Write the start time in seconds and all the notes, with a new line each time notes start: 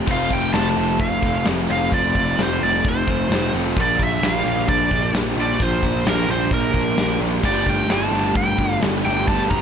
0.07 F1 F3 A3 C4 F4 F5, kick, crash
0.30 F1 A3 C4 F4 G5, kick, open hi-hat
0.53 F1 F3 A3 C4 F4 A5, snare, open hi-hat
0.76 F1 A3 C4 F4, open hi-hat
0.99 F1 F5, kick, open hi-hat
1.22 F1 A3 C4 F4, kick, open hi-hat
1.45 F1 F3 A3 C4 F4, snare, open hi-hat
1.68 F1 F3 A3 C4 F4 F5, open hi-hat
1.92 F1 F3 A3 C4 F4 D5, kick, open hi-hat
2.14 F1 A3 C4 F4, kick, open hi-hat
2.38 F1 F3 A3 C4 F4, snare, open hi-hat
2.43 C5
2.61 F1 A3 C4 F4 D5, snare, open hi-hat
2.85 F1, kick, open hi-hat
2.89 C5
3.07 F1 A3 C4 F4, kick, open hi-hat
3.29 F1 F3 A3 C4 F4, snare, open hi-hat
3.53 F1 F3 A3 C4 F4, open hi-hat
3.76 A#1 A#2 F3 A#3 D4 F4, kick, open hi-hat
3.81 D5
3.98 A#1 A#3 D4 F4, kick, open hi-hat
4.04 E5
4.22 A#1 F3 A#3 D4 F4, snare, open hi-hat
4.26 F5
4.45 A#1 A#3 D4 F4, open hi-hat
4.68 A#1 D5, kick, open hi-hat
4.90 A#1 A#3 D4 F4, kick, open hi-hat
5.13 A#1 A#2 F3 A#3 D4 F4, snare, open hi-hat
5.37 A#1 F3 A#3 D4 F4, open hi-hat
5.41 A#2 D5
5.59 A#1 A#2 F3 A#3 D4 F4 C5, kick, open hi-hat
5.82 A#1 A#3 D4 F4, kick, open hi-hat
6.05 A#1 F3 A#3 D4 F4 A#4, snare, open hi-hat
6.27 A#1 A#3 D4 F4, snare, open hi-hat
6.31 C5
6.50 A#1 A#4, kick, open hi-hat
6.74 A#1 A#3 D4 F4, kick, open hi-hat
6.96 A#1 A#2 F3 A#3 D4 F4, snare, open hi-hat
7.20 A#1 A#2 F3 A#3 D4 F4, open hi-hat
7.43 G1 G3 A3 D4 G4 D5, kick, crash
7.66 G1 A3 D4 G4 G5, kick, open hi-hat
7.88 G1 G3 A3 D4 G4, snare, open hi-hat
7.92 A5
8.11 G1 A3 D4 G4, snare, open hi-hat
8.35 G1 G5, kick, open hi-hat
8.58 G1 A3 D4 G4, kick, open hi-hat
8.81 G1 G3 A3 D4 G4, snare, open hi-hat
9.04 G1 G3 A3 D4 G4 G5, open hi-hat
9.27 G1 G3 A3 D4 G4 A5, kick, open hi-hat
9.50 G1 A3 D4 G4 A#5, kick, open hi-hat